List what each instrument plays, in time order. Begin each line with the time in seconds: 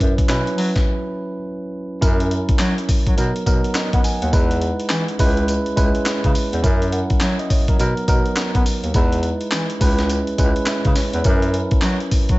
Already playing: tine electric piano F#3 C#4 E4 B4
0.00 bass clarinet F#2, kick, closed hi-hat
0.18 kick, closed hi-hat
0.28 bass clarinet B2, tine electric piano F#3 C#4 E4 B4, snare, clap, closed hi-hat
0.47 closed hi-hat
0.57 bass clarinet F#3, open hi-hat
0.76 kick, snare, closed hi-hat
2.01 bass clarinet F#2, tine electric piano F#3 C#4 E4 A#4, kick, closed hi-hat, tambourine
2.20 closed hi-hat
2.31 closed hi-hat
2.49 kick, closed hi-hat
2.59 bass clarinet F#3, snare, clap, closed hi-hat, tambourine
2.78 closed hi-hat
2.89 bass clarinet F#3, kick, open hi-hat, tambourine
3.07 bass clarinet F#3, kick, closed hi-hat
3.17 bass clarinet B2, tine electric piano F#3 B3 D#4 A#4, closed hi-hat, tambourine
3.35 bass clarinet B2, closed hi-hat
3.46 bass clarinet B2, tine electric piano F#3 B3 D#4 A#4, kick, closed hi-hat, tambourine
3.64 closed hi-hat
3.75 tine electric piano D#5, snare, clap, closed hi-hat, tambourine
3.93 bass clarinet B3, tine electric piano F#5, kick, closed hi-hat
4.04 tine electric piano G#5, open hi-hat, tambourine
4.22 bass clarinet D#2, tine electric piano F#5, closed hi-hat
4.32 bass clarinet E2, tine electric piano G#3 D#4 E4 B4, kick, closed hi-hat, tambourine
4.51 closed hi-hat
4.61 closed hi-hat
4.80 closed hi-hat
4.90 bass clarinet E3, snare, clap, closed hi-hat, tambourine
5.08 closed hi-hat
5.19 bass clarinet C#2, tine electric piano G#3 C#4 E4 B4, kick, open hi-hat, tambourine
5.37 closed hi-hat
5.48 closed hi-hat, tambourine
5.66 bass clarinet C#2, closed hi-hat
5.76 bass clarinet C#2, tine electric piano G#3 C#4 E4 B4, kick, closed hi-hat, tambourine
5.95 closed hi-hat
6.06 snare, clap, closed hi-hat, tambourine
6.24 bass clarinet C#3, kick, closed hi-hat
6.35 open hi-hat, tambourine
6.53 bass clarinet E2, closed hi-hat
6.63 bass clarinet F#2, tine electric piano F#3 C#4 E4 A#4, kick, closed hi-hat, tambourine
6.82 closed hi-hat
6.92 tine electric piano F#5, closed hi-hat
7.10 kick, closed hi-hat
7.21 bass clarinet F#3, tine electric piano E5, snare, clap, closed hi-hat, tambourine
7.39 tine electric piano D#5, closed hi-hat
7.50 bass clarinet F#3, tine electric piano C#5, kick, open hi-hat, tambourine
7.68 bass clarinet F#3, tine electric piano A#4, kick, closed hi-hat
7.79 bass clarinet B2, tine electric piano F#3 B3 D#4 A#4, closed hi-hat, tambourine
7.97 bass clarinet B2, closed hi-hat
8.08 bass clarinet B2, tine electric piano F#3 B3 D#4 A#4, kick, closed hi-hat, tambourine
8.26 closed hi-hat
8.36 snare, clap, closed hi-hat, tambourine
8.55 bass clarinet B3, kick, closed hi-hat
8.66 open hi-hat, tambourine
8.83 bass clarinet D#2, closed hi-hat
8.94 bass clarinet E2, tine electric piano G#3 D#4 E4 B4, kick, closed hi-hat, tambourine
9.12 closed hi-hat
9.23 closed hi-hat
9.41 closed hi-hat
9.51 bass clarinet E3, snare, clap, closed hi-hat, tambourine
9.70 closed hi-hat
9.80 bass clarinet C#2, tine electric piano G#3 C#4 D#4 B4, kick, open hi-hat, tambourine
9.88 tine electric piano E4
9.99 snare, closed hi-hat
10.09 closed hi-hat, tambourine
10.27 bass clarinet C#2, closed hi-hat
10.38 bass clarinet C#2, tine electric piano G#3 C#4 E4 B4, kick, closed hi-hat, tambourine
10.56 closed hi-hat
10.66 tine electric piano E5, snare, clap, closed hi-hat, tambourine
10.85 bass clarinet C#3, kick, closed hi-hat
10.96 tine electric piano C#5, snare, open hi-hat, tambourine
11.13 bass clarinet E2, tine electric piano B4, closed hi-hat
11.24 bass clarinet F#2, tine electric piano F#3 C#4 E4 A#4, kick, closed hi-hat, tambourine
11.42 closed hi-hat
11.54 closed hi-hat
11.71 kick, closed hi-hat
11.82 bass clarinet F#3, snare, clap, closed hi-hat, tambourine
12.00 closed hi-hat
12.11 bass clarinet F#3, kick, open hi-hat, tambourine
12.29 bass clarinet F#3, kick, closed hi-hat